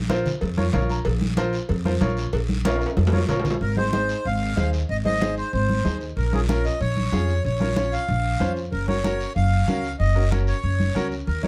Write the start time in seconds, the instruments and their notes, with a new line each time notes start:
Already playing: upright bass A#1
0.09 upright piano F4 A#4 C5, cowbell, high conga, short guiro
0.26 low conga, short guiro
0.41 upright bass F2, cowbell, long guiro
0.57 upright piano F4 A#4 C#5, high conga
0.73 upright bass A#1, upright piano F4 A#4 C#5 F5, cowbell, high conga, low conga, low timbale, short guiro
0.89 upright piano A#5, high conga, short guiro
1.05 upright bass A#1, cowbell, high conga, long guiro
1.21 high conga
1.37 upright piano F4 A#4 C5, cowbell, high conga, short guiro
1.53 short guiro
1.69 upright bass F2, cowbell, long guiro
1.85 upright piano F4 A#4 C5, high conga
2.01 upright bass A#1, upright piano F4 A#4 C#5, cowbell, high conga, short guiro
2.17 high conga, short guiro
2.33 upright bass A#1, cowbell, high conga, long guiro
2.49 high conga
2.65 upright piano F4 A#4 C#5, cowbell, high conga, high timbale, short guiro
2.76 high timbale
2.81 short guiro
2.86 high timbale
2.97 upright bass F2, cowbell, high conga, low timbale, long guiro
3.07 low timbale
3.13 upright piano F4 A#4 C#5, high conga
3.18 low timbale
3.28 upright bass A#1, upright piano F4 A#4 C#5, cowbell, low conga, low timbale, short guiro
3.40 low timbale
3.45 low conga, short guiro
3.50 low timbale
3.61 upright bass G#1, accordion A#4, high conga, long guiro
3.77 upright piano D#4 G#4 C5, accordion C5, high conga
3.93 upright piano D#4 G#4 C5, high conga, short guiro
4.09 short guiro
4.25 upright bass G#1, accordion F5, long guiro
4.56 upright bass D#2, upright piano D#4 G#4 C5, high conga, short guiro
4.73 high conga, short guiro
4.89 upright bass G#1, accordion D#5, high conga, long guiro
5.05 upright piano D#4 G#4 C5, accordion D#5, high conga
5.21 upright piano D#4 G#4 C5, high conga, short guiro
5.37 accordion C5, short guiro
5.53 upright bass G#1, accordion C5, long guiro
5.69 high conga
5.85 upright bass D#2, upright piano D#4 G#4 C5, high conga, short guiro
6.01 high conga, short guiro
6.17 upright bass A#1, accordion A#4, high conga, long guiro
6.33 upright piano C#4 F4 A#4, accordion G#4, high conga
6.49 upright piano C#4 F4 A#4, accordion A#4, high conga, short guiro
6.65 accordion D#5, short guiro
6.81 upright bass A#1, accordion C#5, long guiro
6.97 high conga
7.12 upright bass F2, upright piano C#4 F4 G#4, high conga, short guiro
7.28 high conga, short guiro
7.44 upright bass A#1, accordion C#5, high conga, long guiro
7.60 upright piano C#4 F4 A#4, high conga
7.76 upright piano C#4 F4 C#5, high conga, short guiro
7.92 accordion F5, short guiro
8.08 upright bass A#1, long guiro
8.40 upright bass F2, upright piano C#4 F4 C5, high conga, short guiro
8.56 high conga, short guiro
8.72 upright bass F#1, accordion A#4, high conga, long guiro
8.88 upright piano C#4 F#4 A#4, accordion C#5, high conga
9.04 upright piano C#4 F#4 A#4, high conga, short guiro
9.20 short guiro
9.36 upright bass F#1, accordion F5, long guiro
9.68 upright bass C#2, upright piano C#4 F#4 A#4, high conga, short guiro
9.84 high conga, short guiro
10.00 upright bass F#1, accordion D#5, high conga, long guiro
10.15 upright piano C#4 F#4 A#4
10.31 upright piano C#4 F#4 A#4, accordion C#5, high conga, short guiro
10.47 accordion C#5, short guiro
10.63 upright bass F#1, long guiro
10.80 high conga
10.95 upright bass C#2, upright piano C#4 F#4 A#4, high conga, short guiro
11.11 high conga, short guiro
11.27 upright bass D#2, accordion A#4, high conga, long guiro
11.43 upright piano D#4 F#4 A#4, accordion C#5, high conga